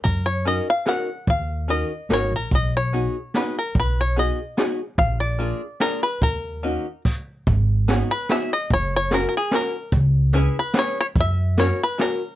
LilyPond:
<<
  \new Staff \with { instrumentName = "Five-string banjo" } { \time 3/4 \key ees \minor \tempo 4 = 146 bes'8 des''8 ees''8 f''8 ges''4 | f''4 ees''4 des''8 bes'8 | dis''8 des''4. b'8 bes'8 | b'8 des''8 dis''4 r4 |
f''8 d''4. bes'8 ces''8 | bes'2 r4 | \key gis \minor r4. b'8 e''8 dis''8 | cis''8 cis''8 ais'16. ais'32 gis'8 ais'4 |
r4. b'8 cis''8 cis''8 | e''4 cis''8 b'8 ais'4 | }
  \new Staff \with { instrumentName = "Five-string banjo" } { \time 3/4 \key ees \minor r4 <des' ees' ges' bes'>8 r8 <des' ees' ges' bes'>8 r8 | r4 <des' ees' ges' bes'>8 r8 <des' ees' ges' bes'>8 r8 | r4 <b dis' fis' gis'>8 r8 <b dis' fis' gis'>8 r8 | r4 <b dis' fis' gis'>8 r8 <b dis' fis' gis'>8 r8 |
r4 <bes d' f' aes'>8 r8 <bes d' f' aes'>8 r8 | r4 <bes des' ees' ges'>8 r4. | \key gis \minor r4 <b dis' fis' gis'>8 r8 <b dis' fis' gis'>8 r8 | r4 <cis' e' fis' ais'>8 r8 <cis' e' fis' ais'>8 r8 |
r4 <cis' e' gis' b'>8 r8 <cis' e' gis' b'>8 r8 | r4 <cis' e' fis' ais'>8 r8 <cis' e' fis' ais'>8 r8 | }
  \new Staff \with { instrumentName = "Upright bass" } { \clef bass \time 3/4 \key ees \minor ges,2 r4 | ees,2 aes,,8 bes,,8 | b,,2 r4 | b,,2 r4 |
bes,,2 r4 | ees,2 r4 | \key gis \minor gis,,2 r4 | fis,,2 r4 |
cis,2 r4 | fis,2 r4 | }
  \new DrumStaff \with { instrumentName = "Drums" } \drummode { \time 3/4 <hh bd>4 hh4 <hh sn>4 | <hh bd>4 hh4 <hh sn>4 | <hh bd>4 hh4 <hh sn>4 | <hh bd>4 hh4 <hh sn>4 |
<hh bd>4 hh4 <hh sn>4 | <hh bd>4 hh4 <cymc bd>4 | <hh bd>4 <hh sn>4 <hh sn>4 | <hh bd>4 <hh sn>4 <hh sn>4 |
<hh bd>4 <hh sn>4 <hh sn>4 | <hh bd>4 <hh sn>4 <hh sn>4 | }
>>